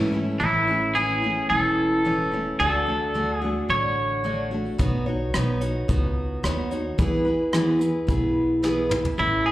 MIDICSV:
0, 0, Header, 1, 7, 480
1, 0, Start_track
1, 0, Key_signature, 3, "major"
1, 0, Tempo, 548446
1, 355, Time_signature, 4, 2, 24, 8
1, 8329, End_track
2, 0, Start_track
2, 0, Title_t, "Violin section"
2, 0, Program_c, 0, 48
2, 0, Note_on_c, 0, 73, 84
2, 0, Note_on_c, 0, 76, 73
2, 0, Note_on_c, 0, 81, 74
2, 0, Note_on_c, 0, 88, 90
2, 322, Note_off_c, 0, 88, 0
2, 335, Note_off_c, 0, 76, 0
2, 336, Note_off_c, 0, 73, 0
2, 336, Note_off_c, 0, 81, 0
2, 8329, End_track
3, 0, Start_track
3, 0, Title_t, "Pedal steel guitar"
3, 0, Program_c, 1, 26
3, 0, Note_on_c, 1, 69, 77
3, 0, Note_on_c, 1, 73, 72
3, 0, Note_on_c, 1, 76, 68
3, 340, Note_off_c, 1, 69, 0
3, 342, Note_off_c, 1, 73, 0
3, 349, Note_off_c, 1, 76, 0
3, 8329, End_track
4, 0, Start_track
4, 0, Title_t, "Clean electric guitar"
4, 0, Program_c, 2, 27
4, 349, Note_on_c, 2, 64, 66
4, 832, Note_on_c, 2, 68, 78
4, 846, Note_off_c, 2, 64, 0
4, 1307, Note_off_c, 2, 68, 0
4, 1310, Note_on_c, 2, 69, 78
4, 2262, Note_off_c, 2, 69, 0
4, 2273, Note_on_c, 2, 69, 85
4, 2929, Note_off_c, 2, 69, 0
4, 2929, Note_on_c, 2, 68, 85
4, 3237, Note_off_c, 2, 68, 0
4, 3240, Note_on_c, 2, 73, 81
4, 3922, Note_off_c, 2, 73, 0
4, 8046, Note_on_c, 2, 64, 67
4, 8265, Note_off_c, 2, 64, 0
4, 8278, Note_on_c, 2, 68, 68
4, 8329, Note_off_c, 2, 68, 0
4, 8329, End_track
5, 0, Start_track
5, 0, Title_t, "Steel-string acoustic guitar"
5, 0, Program_c, 3, 25
5, 0, Note_on_c, 3, 45, 82
5, 0, Note_on_c, 3, 52, 81
5, 0, Note_on_c, 3, 57, 93
5, 0, Note_on_c, 3, 61, 87
5, 0, Note_on_c, 3, 64, 92
5, 98, Note_off_c, 3, 64, 0
5, 108, Note_on_c, 3, 64, 62
5, 112, Note_off_c, 3, 45, 0
5, 112, Note_off_c, 3, 61, 0
5, 114, Note_off_c, 3, 52, 0
5, 117, Note_off_c, 3, 57, 0
5, 122, Note_on_c, 3, 61, 51
5, 131, Note_on_c, 3, 57, 45
5, 346, Note_off_c, 3, 57, 0
5, 348, Note_on_c, 3, 45, 68
5, 350, Note_off_c, 3, 61, 0
5, 350, Note_on_c, 3, 52, 66
5, 351, Note_off_c, 3, 64, 0
5, 357, Note_on_c, 3, 57, 75
5, 360, Note_on_c, 3, 61, 76
5, 362, Note_on_c, 3, 64, 73
5, 580, Note_off_c, 3, 64, 0
5, 591, Note_off_c, 3, 45, 0
5, 591, Note_on_c, 3, 64, 49
5, 592, Note_off_c, 3, 52, 0
5, 594, Note_off_c, 3, 61, 0
5, 596, Note_off_c, 3, 57, 0
5, 604, Note_on_c, 3, 61, 39
5, 615, Note_on_c, 3, 57, 39
5, 830, Note_off_c, 3, 57, 0
5, 830, Note_on_c, 3, 45, 71
5, 833, Note_off_c, 3, 61, 0
5, 833, Note_off_c, 3, 64, 0
5, 837, Note_on_c, 3, 52, 59
5, 841, Note_on_c, 3, 57, 64
5, 844, Note_on_c, 3, 61, 74
5, 847, Note_on_c, 3, 64, 76
5, 1060, Note_off_c, 3, 64, 0
5, 1070, Note_on_c, 3, 64, 45
5, 1072, Note_off_c, 3, 45, 0
5, 1073, Note_off_c, 3, 61, 0
5, 1076, Note_off_c, 3, 52, 0
5, 1077, Note_off_c, 3, 57, 0
5, 1084, Note_on_c, 3, 61, 47
5, 1094, Note_on_c, 3, 57, 41
5, 1305, Note_off_c, 3, 57, 0
5, 1308, Note_on_c, 3, 52, 47
5, 1312, Note_off_c, 3, 64, 0
5, 1315, Note_off_c, 3, 61, 0
5, 1316, Note_on_c, 3, 57, 51
5, 1326, Note_on_c, 3, 61, 55
5, 1332, Note_on_c, 3, 64, 51
5, 1784, Note_off_c, 3, 52, 0
5, 1787, Note_off_c, 3, 57, 0
5, 1791, Note_on_c, 3, 45, 59
5, 1792, Note_off_c, 3, 61, 0
5, 1795, Note_on_c, 3, 52, 63
5, 1797, Note_off_c, 3, 64, 0
5, 1797, Note_on_c, 3, 57, 64
5, 1802, Note_on_c, 3, 61, 74
5, 1807, Note_on_c, 3, 64, 64
5, 2017, Note_off_c, 3, 64, 0
5, 2028, Note_on_c, 3, 64, 48
5, 2032, Note_off_c, 3, 45, 0
5, 2032, Note_off_c, 3, 61, 0
5, 2034, Note_off_c, 3, 52, 0
5, 2036, Note_off_c, 3, 57, 0
5, 2043, Note_on_c, 3, 61, 49
5, 2051, Note_on_c, 3, 57, 40
5, 2265, Note_off_c, 3, 57, 0
5, 2269, Note_on_c, 3, 50, 66
5, 2271, Note_off_c, 3, 64, 0
5, 2276, Note_on_c, 3, 57, 69
5, 2277, Note_off_c, 3, 61, 0
5, 2281, Note_on_c, 3, 62, 70
5, 2285, Note_on_c, 3, 66, 78
5, 2497, Note_off_c, 3, 66, 0
5, 2508, Note_on_c, 3, 66, 45
5, 2512, Note_off_c, 3, 50, 0
5, 2512, Note_off_c, 3, 62, 0
5, 2515, Note_off_c, 3, 57, 0
5, 2523, Note_on_c, 3, 62, 44
5, 2534, Note_on_c, 3, 57, 39
5, 2747, Note_off_c, 3, 57, 0
5, 2750, Note_off_c, 3, 62, 0
5, 2750, Note_on_c, 3, 50, 60
5, 2751, Note_off_c, 3, 66, 0
5, 2758, Note_on_c, 3, 57, 71
5, 2760, Note_on_c, 3, 62, 65
5, 2767, Note_on_c, 3, 66, 66
5, 2980, Note_off_c, 3, 66, 0
5, 2990, Note_on_c, 3, 66, 58
5, 2992, Note_off_c, 3, 50, 0
5, 2996, Note_off_c, 3, 57, 0
5, 2997, Note_off_c, 3, 62, 0
5, 3007, Note_on_c, 3, 62, 47
5, 3017, Note_on_c, 3, 57, 41
5, 3225, Note_off_c, 3, 57, 0
5, 3226, Note_on_c, 3, 50, 46
5, 3232, Note_off_c, 3, 66, 0
5, 3234, Note_off_c, 3, 62, 0
5, 3236, Note_on_c, 3, 57, 48
5, 3244, Note_on_c, 3, 62, 54
5, 3249, Note_on_c, 3, 66, 56
5, 3698, Note_off_c, 3, 50, 0
5, 3703, Note_off_c, 3, 57, 0
5, 3708, Note_off_c, 3, 62, 0
5, 3708, Note_on_c, 3, 50, 59
5, 3714, Note_on_c, 3, 57, 67
5, 3715, Note_off_c, 3, 66, 0
5, 3719, Note_on_c, 3, 62, 70
5, 3725, Note_on_c, 3, 66, 75
5, 3937, Note_off_c, 3, 66, 0
5, 3948, Note_on_c, 3, 66, 54
5, 3951, Note_off_c, 3, 62, 0
5, 3952, Note_off_c, 3, 50, 0
5, 3954, Note_off_c, 3, 57, 0
5, 3961, Note_on_c, 3, 62, 45
5, 3972, Note_on_c, 3, 57, 37
5, 4187, Note_on_c, 3, 59, 75
5, 4189, Note_off_c, 3, 57, 0
5, 4191, Note_off_c, 3, 66, 0
5, 4192, Note_on_c, 3, 63, 77
5, 4197, Note_off_c, 3, 62, 0
5, 4200, Note_on_c, 3, 66, 86
5, 4205, Note_on_c, 3, 73, 88
5, 4418, Note_off_c, 3, 73, 0
5, 4429, Note_on_c, 3, 73, 56
5, 4431, Note_off_c, 3, 59, 0
5, 4434, Note_off_c, 3, 63, 0
5, 4434, Note_off_c, 3, 66, 0
5, 4444, Note_on_c, 3, 66, 46
5, 4452, Note_on_c, 3, 63, 44
5, 4666, Note_off_c, 3, 63, 0
5, 4670, Note_on_c, 3, 59, 78
5, 4672, Note_off_c, 3, 66, 0
5, 4672, Note_off_c, 3, 73, 0
5, 4677, Note_on_c, 3, 63, 83
5, 4683, Note_on_c, 3, 66, 75
5, 4688, Note_on_c, 3, 73, 82
5, 4898, Note_off_c, 3, 73, 0
5, 4908, Note_on_c, 3, 73, 58
5, 4912, Note_off_c, 3, 66, 0
5, 4913, Note_off_c, 3, 59, 0
5, 4916, Note_off_c, 3, 63, 0
5, 4922, Note_on_c, 3, 66, 47
5, 4933, Note_on_c, 3, 63, 47
5, 5147, Note_off_c, 3, 63, 0
5, 5147, Note_on_c, 3, 59, 56
5, 5152, Note_off_c, 3, 73, 0
5, 5154, Note_off_c, 3, 66, 0
5, 5158, Note_on_c, 3, 63, 66
5, 5165, Note_on_c, 3, 66, 69
5, 5172, Note_on_c, 3, 73, 62
5, 5619, Note_off_c, 3, 59, 0
5, 5626, Note_off_c, 3, 63, 0
5, 5629, Note_on_c, 3, 59, 69
5, 5632, Note_off_c, 3, 66, 0
5, 5636, Note_off_c, 3, 73, 0
5, 5636, Note_on_c, 3, 63, 79
5, 5643, Note_on_c, 3, 66, 76
5, 5647, Note_on_c, 3, 73, 75
5, 5861, Note_off_c, 3, 73, 0
5, 5872, Note_on_c, 3, 73, 53
5, 5873, Note_off_c, 3, 59, 0
5, 5873, Note_off_c, 3, 66, 0
5, 5876, Note_off_c, 3, 63, 0
5, 5883, Note_on_c, 3, 66, 42
5, 5892, Note_on_c, 3, 63, 38
5, 6108, Note_on_c, 3, 52, 67
5, 6111, Note_off_c, 3, 63, 0
5, 6111, Note_on_c, 3, 59, 76
5, 6114, Note_off_c, 3, 73, 0
5, 6115, Note_off_c, 3, 66, 0
5, 6115, Note_on_c, 3, 64, 75
5, 6119, Note_on_c, 3, 68, 82
5, 6124, Note_on_c, 3, 71, 91
5, 6333, Note_off_c, 3, 71, 0
5, 6344, Note_on_c, 3, 71, 55
5, 6346, Note_off_c, 3, 68, 0
5, 6352, Note_off_c, 3, 52, 0
5, 6354, Note_off_c, 3, 59, 0
5, 6355, Note_off_c, 3, 64, 0
5, 6357, Note_on_c, 3, 68, 51
5, 6370, Note_on_c, 3, 64, 45
5, 6585, Note_off_c, 3, 64, 0
5, 6587, Note_on_c, 3, 52, 78
5, 6589, Note_off_c, 3, 68, 0
5, 6590, Note_off_c, 3, 71, 0
5, 6591, Note_on_c, 3, 59, 76
5, 6596, Note_on_c, 3, 64, 76
5, 6599, Note_on_c, 3, 68, 75
5, 6602, Note_on_c, 3, 71, 83
5, 6808, Note_off_c, 3, 71, 0
5, 6818, Note_on_c, 3, 71, 53
5, 6823, Note_off_c, 3, 68, 0
5, 6832, Note_off_c, 3, 52, 0
5, 6833, Note_off_c, 3, 64, 0
5, 6833, Note_on_c, 3, 68, 48
5, 6834, Note_off_c, 3, 59, 0
5, 6844, Note_on_c, 3, 64, 43
5, 7061, Note_on_c, 3, 59, 59
5, 7062, Note_off_c, 3, 64, 0
5, 7067, Note_off_c, 3, 68, 0
5, 7067, Note_off_c, 3, 71, 0
5, 7072, Note_on_c, 3, 64, 59
5, 7077, Note_on_c, 3, 68, 56
5, 7086, Note_on_c, 3, 71, 67
5, 7543, Note_off_c, 3, 59, 0
5, 7545, Note_off_c, 3, 64, 0
5, 7549, Note_on_c, 3, 52, 65
5, 7550, Note_off_c, 3, 68, 0
5, 7552, Note_off_c, 3, 71, 0
5, 7554, Note_on_c, 3, 59, 70
5, 7556, Note_on_c, 3, 64, 77
5, 7561, Note_on_c, 3, 68, 88
5, 7563, Note_on_c, 3, 71, 80
5, 7773, Note_off_c, 3, 71, 0
5, 7783, Note_on_c, 3, 71, 52
5, 7789, Note_off_c, 3, 68, 0
5, 7793, Note_off_c, 3, 52, 0
5, 7796, Note_off_c, 3, 59, 0
5, 7797, Note_off_c, 3, 64, 0
5, 7799, Note_on_c, 3, 68, 42
5, 7809, Note_on_c, 3, 64, 41
5, 8029, Note_on_c, 3, 45, 65
5, 8031, Note_off_c, 3, 71, 0
5, 8032, Note_off_c, 3, 64, 0
5, 8034, Note_on_c, 3, 57, 61
5, 8039, Note_off_c, 3, 68, 0
5, 8039, Note_on_c, 3, 61, 64
5, 8042, Note_on_c, 3, 64, 70
5, 8045, Note_on_c, 3, 69, 71
5, 8329, Note_off_c, 3, 45, 0
5, 8329, Note_off_c, 3, 57, 0
5, 8329, Note_off_c, 3, 61, 0
5, 8329, Note_off_c, 3, 64, 0
5, 8329, Note_off_c, 3, 69, 0
5, 8329, End_track
6, 0, Start_track
6, 0, Title_t, "Upright bass"
6, 0, Program_c, 4, 32
6, 0, Note_on_c, 4, 44, 88
6, 341, Note_off_c, 4, 44, 0
6, 356, Note_on_c, 4, 33, 78
6, 1217, Note_off_c, 4, 33, 0
6, 1316, Note_on_c, 4, 28, 78
6, 2177, Note_off_c, 4, 28, 0
6, 2274, Note_on_c, 4, 38, 85
6, 3137, Note_off_c, 4, 38, 0
6, 3231, Note_on_c, 4, 33, 79
6, 4095, Note_off_c, 4, 33, 0
6, 4197, Note_on_c, 4, 35, 82
6, 4627, Note_off_c, 4, 35, 0
6, 4678, Note_on_c, 4, 35, 73
6, 5085, Note_off_c, 4, 35, 0
6, 5156, Note_on_c, 4, 37, 78
6, 5564, Note_off_c, 4, 37, 0
6, 5636, Note_on_c, 4, 39, 75
6, 6044, Note_off_c, 4, 39, 0
6, 6115, Note_on_c, 4, 40, 79
6, 6979, Note_off_c, 4, 40, 0
6, 7076, Note_on_c, 4, 35, 75
6, 7940, Note_off_c, 4, 35, 0
6, 8036, Note_on_c, 4, 33, 77
6, 8329, Note_off_c, 4, 33, 0
6, 8329, End_track
7, 0, Start_track
7, 0, Title_t, "Drums"
7, 4195, Note_on_c, 9, 42, 59
7, 4196, Note_on_c, 9, 36, 100
7, 4283, Note_off_c, 9, 36, 0
7, 4283, Note_off_c, 9, 42, 0
7, 4674, Note_on_c, 9, 37, 94
7, 4674, Note_on_c, 9, 42, 60
7, 4762, Note_off_c, 9, 37, 0
7, 4762, Note_off_c, 9, 42, 0
7, 4913, Note_on_c, 9, 42, 56
7, 5001, Note_off_c, 9, 42, 0
7, 5154, Note_on_c, 9, 42, 59
7, 5155, Note_on_c, 9, 36, 104
7, 5241, Note_off_c, 9, 42, 0
7, 5243, Note_off_c, 9, 36, 0
7, 5636, Note_on_c, 9, 37, 91
7, 5636, Note_on_c, 9, 42, 50
7, 5724, Note_off_c, 9, 37, 0
7, 5724, Note_off_c, 9, 42, 0
7, 5875, Note_on_c, 9, 42, 50
7, 5962, Note_off_c, 9, 42, 0
7, 6115, Note_on_c, 9, 42, 52
7, 6116, Note_on_c, 9, 36, 100
7, 6203, Note_off_c, 9, 42, 0
7, 6204, Note_off_c, 9, 36, 0
7, 6592, Note_on_c, 9, 37, 98
7, 6592, Note_on_c, 9, 42, 51
7, 6679, Note_off_c, 9, 37, 0
7, 6679, Note_off_c, 9, 42, 0
7, 6835, Note_on_c, 9, 42, 53
7, 6922, Note_off_c, 9, 42, 0
7, 7076, Note_on_c, 9, 36, 99
7, 7076, Note_on_c, 9, 42, 58
7, 7163, Note_off_c, 9, 42, 0
7, 7164, Note_off_c, 9, 36, 0
7, 7558, Note_on_c, 9, 38, 45
7, 7646, Note_off_c, 9, 38, 0
7, 7798, Note_on_c, 9, 45, 71
7, 7886, Note_off_c, 9, 45, 0
7, 7919, Note_on_c, 9, 43, 66
7, 8006, Note_off_c, 9, 43, 0
7, 8329, End_track
0, 0, End_of_file